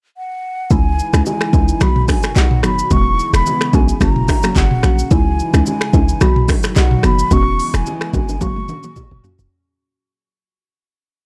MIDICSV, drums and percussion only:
0, 0, Header, 1, 2, 480
1, 0, Start_track
1, 0, Tempo, 550459
1, 615, Time_signature, 4, 2, 24, 8
1, 9812, End_track
2, 0, Start_track
2, 0, Title_t, "Drums"
2, 615, Note_on_c, 9, 82, 72
2, 616, Note_on_c, 9, 36, 127
2, 621, Note_on_c, 9, 64, 76
2, 702, Note_off_c, 9, 82, 0
2, 703, Note_off_c, 9, 36, 0
2, 708, Note_off_c, 9, 64, 0
2, 865, Note_on_c, 9, 82, 52
2, 952, Note_off_c, 9, 82, 0
2, 991, Note_on_c, 9, 37, 98
2, 992, Note_on_c, 9, 82, 77
2, 997, Note_on_c, 9, 26, 77
2, 1078, Note_off_c, 9, 37, 0
2, 1079, Note_off_c, 9, 82, 0
2, 1084, Note_off_c, 9, 26, 0
2, 1098, Note_on_c, 9, 82, 76
2, 1105, Note_on_c, 9, 60, 73
2, 1105, Note_on_c, 9, 64, 68
2, 1186, Note_off_c, 9, 82, 0
2, 1192, Note_off_c, 9, 60, 0
2, 1192, Note_off_c, 9, 64, 0
2, 1227, Note_on_c, 9, 37, 98
2, 1233, Note_on_c, 9, 26, 78
2, 1314, Note_off_c, 9, 37, 0
2, 1320, Note_off_c, 9, 26, 0
2, 1336, Note_on_c, 9, 36, 100
2, 1338, Note_on_c, 9, 82, 55
2, 1340, Note_on_c, 9, 61, 86
2, 1423, Note_off_c, 9, 36, 0
2, 1425, Note_off_c, 9, 82, 0
2, 1428, Note_off_c, 9, 61, 0
2, 1469, Note_on_c, 9, 82, 76
2, 1556, Note_off_c, 9, 82, 0
2, 1576, Note_on_c, 9, 82, 75
2, 1577, Note_on_c, 9, 37, 99
2, 1583, Note_on_c, 9, 26, 82
2, 1584, Note_on_c, 9, 64, 85
2, 1663, Note_off_c, 9, 82, 0
2, 1664, Note_off_c, 9, 37, 0
2, 1670, Note_off_c, 9, 26, 0
2, 1671, Note_off_c, 9, 64, 0
2, 1708, Note_on_c, 9, 45, 93
2, 1796, Note_off_c, 9, 45, 0
2, 1815, Note_on_c, 9, 46, 52
2, 1815, Note_on_c, 9, 82, 55
2, 1816, Note_on_c, 9, 36, 97
2, 1821, Note_on_c, 9, 37, 97
2, 1822, Note_on_c, 9, 61, 76
2, 1827, Note_on_c, 9, 26, 77
2, 1903, Note_off_c, 9, 36, 0
2, 1903, Note_off_c, 9, 46, 0
2, 1903, Note_off_c, 9, 82, 0
2, 1908, Note_off_c, 9, 37, 0
2, 1910, Note_off_c, 9, 61, 0
2, 1914, Note_off_c, 9, 26, 0
2, 1944, Note_on_c, 9, 82, 77
2, 1952, Note_on_c, 9, 37, 105
2, 1957, Note_on_c, 9, 26, 84
2, 2031, Note_off_c, 9, 82, 0
2, 2039, Note_off_c, 9, 37, 0
2, 2044, Note_off_c, 9, 26, 0
2, 2056, Note_on_c, 9, 82, 78
2, 2061, Note_on_c, 9, 39, 94
2, 2063, Note_on_c, 9, 60, 84
2, 2143, Note_off_c, 9, 82, 0
2, 2148, Note_off_c, 9, 39, 0
2, 2150, Note_off_c, 9, 60, 0
2, 2188, Note_on_c, 9, 45, 93
2, 2275, Note_off_c, 9, 45, 0
2, 2294, Note_on_c, 9, 37, 97
2, 2300, Note_on_c, 9, 26, 81
2, 2301, Note_on_c, 9, 82, 53
2, 2381, Note_off_c, 9, 37, 0
2, 2387, Note_off_c, 9, 26, 0
2, 2388, Note_off_c, 9, 82, 0
2, 2431, Note_on_c, 9, 82, 78
2, 2518, Note_off_c, 9, 82, 0
2, 2535, Note_on_c, 9, 82, 74
2, 2536, Note_on_c, 9, 36, 122
2, 2542, Note_on_c, 9, 64, 80
2, 2622, Note_off_c, 9, 82, 0
2, 2623, Note_off_c, 9, 36, 0
2, 2629, Note_off_c, 9, 64, 0
2, 2784, Note_on_c, 9, 82, 53
2, 2871, Note_off_c, 9, 82, 0
2, 2910, Note_on_c, 9, 37, 99
2, 2911, Note_on_c, 9, 82, 77
2, 2916, Note_on_c, 9, 26, 76
2, 2997, Note_off_c, 9, 37, 0
2, 2998, Note_off_c, 9, 82, 0
2, 3003, Note_off_c, 9, 26, 0
2, 3018, Note_on_c, 9, 82, 75
2, 3027, Note_on_c, 9, 60, 72
2, 3027, Note_on_c, 9, 64, 73
2, 3106, Note_off_c, 9, 82, 0
2, 3114, Note_off_c, 9, 60, 0
2, 3114, Note_off_c, 9, 64, 0
2, 3146, Note_on_c, 9, 37, 99
2, 3152, Note_on_c, 9, 26, 80
2, 3233, Note_off_c, 9, 37, 0
2, 3239, Note_off_c, 9, 26, 0
2, 3255, Note_on_c, 9, 36, 100
2, 3256, Note_on_c, 9, 82, 55
2, 3263, Note_on_c, 9, 61, 90
2, 3343, Note_off_c, 9, 36, 0
2, 3344, Note_off_c, 9, 82, 0
2, 3350, Note_off_c, 9, 61, 0
2, 3389, Note_on_c, 9, 82, 76
2, 3476, Note_off_c, 9, 82, 0
2, 3495, Note_on_c, 9, 36, 99
2, 3495, Note_on_c, 9, 82, 76
2, 3496, Note_on_c, 9, 37, 99
2, 3502, Note_on_c, 9, 26, 84
2, 3503, Note_on_c, 9, 64, 87
2, 3582, Note_off_c, 9, 36, 0
2, 3582, Note_off_c, 9, 82, 0
2, 3583, Note_off_c, 9, 37, 0
2, 3589, Note_off_c, 9, 26, 0
2, 3590, Note_off_c, 9, 64, 0
2, 3628, Note_on_c, 9, 45, 92
2, 3715, Note_off_c, 9, 45, 0
2, 3734, Note_on_c, 9, 46, 56
2, 3734, Note_on_c, 9, 82, 55
2, 3735, Note_on_c, 9, 36, 97
2, 3740, Note_on_c, 9, 37, 94
2, 3743, Note_on_c, 9, 61, 76
2, 3746, Note_on_c, 9, 26, 76
2, 3822, Note_off_c, 9, 36, 0
2, 3822, Note_off_c, 9, 46, 0
2, 3822, Note_off_c, 9, 82, 0
2, 3827, Note_off_c, 9, 37, 0
2, 3831, Note_off_c, 9, 61, 0
2, 3833, Note_off_c, 9, 26, 0
2, 3863, Note_on_c, 9, 82, 81
2, 3871, Note_on_c, 9, 37, 104
2, 3877, Note_on_c, 9, 26, 83
2, 3950, Note_off_c, 9, 82, 0
2, 3958, Note_off_c, 9, 37, 0
2, 3964, Note_off_c, 9, 26, 0
2, 3975, Note_on_c, 9, 82, 77
2, 3976, Note_on_c, 9, 36, 105
2, 3980, Note_on_c, 9, 39, 92
2, 3984, Note_on_c, 9, 60, 84
2, 4062, Note_off_c, 9, 82, 0
2, 4064, Note_off_c, 9, 36, 0
2, 4067, Note_off_c, 9, 39, 0
2, 4071, Note_off_c, 9, 60, 0
2, 4107, Note_on_c, 9, 45, 94
2, 4194, Note_off_c, 9, 45, 0
2, 4212, Note_on_c, 9, 37, 101
2, 4218, Note_on_c, 9, 26, 82
2, 4219, Note_on_c, 9, 82, 52
2, 4300, Note_off_c, 9, 37, 0
2, 4305, Note_off_c, 9, 26, 0
2, 4306, Note_off_c, 9, 82, 0
2, 4349, Note_on_c, 9, 82, 78
2, 4436, Note_off_c, 9, 82, 0
2, 4455, Note_on_c, 9, 82, 79
2, 4456, Note_on_c, 9, 36, 124
2, 4462, Note_on_c, 9, 64, 79
2, 4543, Note_off_c, 9, 36, 0
2, 4543, Note_off_c, 9, 82, 0
2, 4549, Note_off_c, 9, 64, 0
2, 4704, Note_on_c, 9, 82, 55
2, 4791, Note_off_c, 9, 82, 0
2, 4829, Note_on_c, 9, 37, 101
2, 4830, Note_on_c, 9, 82, 83
2, 4835, Note_on_c, 9, 26, 77
2, 4917, Note_off_c, 9, 37, 0
2, 4917, Note_off_c, 9, 82, 0
2, 4922, Note_off_c, 9, 26, 0
2, 4937, Note_on_c, 9, 82, 77
2, 4947, Note_on_c, 9, 60, 70
2, 4947, Note_on_c, 9, 64, 70
2, 5024, Note_off_c, 9, 82, 0
2, 5034, Note_off_c, 9, 60, 0
2, 5034, Note_off_c, 9, 64, 0
2, 5065, Note_on_c, 9, 37, 100
2, 5071, Note_on_c, 9, 26, 83
2, 5153, Note_off_c, 9, 37, 0
2, 5158, Note_off_c, 9, 26, 0
2, 5175, Note_on_c, 9, 36, 100
2, 5176, Note_on_c, 9, 82, 57
2, 5182, Note_on_c, 9, 61, 92
2, 5262, Note_off_c, 9, 36, 0
2, 5263, Note_off_c, 9, 82, 0
2, 5269, Note_off_c, 9, 61, 0
2, 5307, Note_on_c, 9, 82, 76
2, 5394, Note_off_c, 9, 82, 0
2, 5414, Note_on_c, 9, 82, 80
2, 5415, Note_on_c, 9, 37, 101
2, 5421, Note_on_c, 9, 26, 83
2, 5423, Note_on_c, 9, 64, 87
2, 5502, Note_off_c, 9, 37, 0
2, 5502, Note_off_c, 9, 82, 0
2, 5508, Note_off_c, 9, 26, 0
2, 5510, Note_off_c, 9, 64, 0
2, 5548, Note_on_c, 9, 45, 95
2, 5635, Note_off_c, 9, 45, 0
2, 5654, Note_on_c, 9, 36, 100
2, 5654, Note_on_c, 9, 46, 55
2, 5654, Note_on_c, 9, 82, 53
2, 5659, Note_on_c, 9, 37, 97
2, 5661, Note_on_c, 9, 61, 78
2, 5665, Note_on_c, 9, 26, 79
2, 5741, Note_off_c, 9, 46, 0
2, 5741, Note_off_c, 9, 82, 0
2, 5742, Note_off_c, 9, 36, 0
2, 5747, Note_off_c, 9, 37, 0
2, 5748, Note_off_c, 9, 61, 0
2, 5752, Note_off_c, 9, 26, 0
2, 5782, Note_on_c, 9, 82, 77
2, 5790, Note_on_c, 9, 37, 107
2, 5795, Note_on_c, 9, 26, 82
2, 5869, Note_off_c, 9, 82, 0
2, 5877, Note_off_c, 9, 37, 0
2, 5883, Note_off_c, 9, 26, 0
2, 5895, Note_on_c, 9, 82, 81
2, 5899, Note_on_c, 9, 39, 91
2, 5902, Note_on_c, 9, 60, 88
2, 5982, Note_off_c, 9, 82, 0
2, 5987, Note_off_c, 9, 39, 0
2, 5989, Note_off_c, 9, 60, 0
2, 6027, Note_on_c, 9, 45, 91
2, 6114, Note_off_c, 9, 45, 0
2, 6132, Note_on_c, 9, 37, 101
2, 6137, Note_on_c, 9, 26, 80
2, 6139, Note_on_c, 9, 82, 55
2, 6219, Note_off_c, 9, 37, 0
2, 6225, Note_off_c, 9, 26, 0
2, 6226, Note_off_c, 9, 82, 0
2, 6268, Note_on_c, 9, 82, 82
2, 6356, Note_off_c, 9, 82, 0
2, 6374, Note_on_c, 9, 82, 74
2, 6375, Note_on_c, 9, 36, 120
2, 6379, Note_on_c, 9, 64, 83
2, 6461, Note_off_c, 9, 82, 0
2, 6462, Note_off_c, 9, 36, 0
2, 6466, Note_off_c, 9, 64, 0
2, 6623, Note_on_c, 9, 46, 57
2, 6623, Note_on_c, 9, 82, 56
2, 6710, Note_off_c, 9, 46, 0
2, 6710, Note_off_c, 9, 82, 0
2, 6748, Note_on_c, 9, 37, 99
2, 6749, Note_on_c, 9, 82, 79
2, 6754, Note_on_c, 9, 26, 81
2, 6835, Note_off_c, 9, 37, 0
2, 6836, Note_off_c, 9, 82, 0
2, 6841, Note_off_c, 9, 26, 0
2, 6856, Note_on_c, 9, 82, 73
2, 6865, Note_on_c, 9, 60, 73
2, 6865, Note_on_c, 9, 64, 70
2, 6943, Note_off_c, 9, 82, 0
2, 6953, Note_off_c, 9, 60, 0
2, 6953, Note_off_c, 9, 64, 0
2, 6984, Note_on_c, 9, 37, 102
2, 6990, Note_on_c, 9, 26, 77
2, 7072, Note_off_c, 9, 37, 0
2, 7077, Note_off_c, 9, 26, 0
2, 7094, Note_on_c, 9, 36, 99
2, 7095, Note_on_c, 9, 82, 55
2, 7102, Note_on_c, 9, 61, 87
2, 7182, Note_off_c, 9, 36, 0
2, 7182, Note_off_c, 9, 82, 0
2, 7189, Note_off_c, 9, 61, 0
2, 7227, Note_on_c, 9, 82, 75
2, 7233, Note_on_c, 9, 61, 68
2, 7314, Note_off_c, 9, 82, 0
2, 7320, Note_off_c, 9, 61, 0
2, 7334, Note_on_c, 9, 36, 100
2, 7335, Note_on_c, 9, 48, 64
2, 7335, Note_on_c, 9, 82, 82
2, 7343, Note_on_c, 9, 64, 84
2, 7421, Note_off_c, 9, 36, 0
2, 7422, Note_off_c, 9, 48, 0
2, 7422, Note_off_c, 9, 82, 0
2, 7430, Note_off_c, 9, 64, 0
2, 7466, Note_on_c, 9, 48, 59
2, 7553, Note_off_c, 9, 48, 0
2, 7574, Note_on_c, 9, 82, 55
2, 7575, Note_on_c, 9, 47, 77
2, 7582, Note_on_c, 9, 61, 78
2, 7661, Note_off_c, 9, 82, 0
2, 7662, Note_off_c, 9, 47, 0
2, 7669, Note_off_c, 9, 61, 0
2, 7702, Note_on_c, 9, 82, 79
2, 7707, Note_on_c, 9, 47, 69
2, 7789, Note_off_c, 9, 82, 0
2, 7794, Note_off_c, 9, 47, 0
2, 7814, Note_on_c, 9, 82, 75
2, 7815, Note_on_c, 9, 36, 97
2, 7815, Note_on_c, 9, 45, 88
2, 7822, Note_on_c, 9, 60, 83
2, 7901, Note_off_c, 9, 82, 0
2, 7902, Note_off_c, 9, 36, 0
2, 7902, Note_off_c, 9, 45, 0
2, 7909, Note_off_c, 9, 60, 0
2, 7947, Note_on_c, 9, 45, 85
2, 8034, Note_off_c, 9, 45, 0
2, 8055, Note_on_c, 9, 43, 104
2, 8059, Note_on_c, 9, 82, 55
2, 8143, Note_off_c, 9, 43, 0
2, 8146, Note_off_c, 9, 82, 0
2, 8187, Note_on_c, 9, 43, 97
2, 8188, Note_on_c, 9, 82, 83
2, 8274, Note_off_c, 9, 43, 0
2, 8275, Note_off_c, 9, 82, 0
2, 9812, End_track
0, 0, End_of_file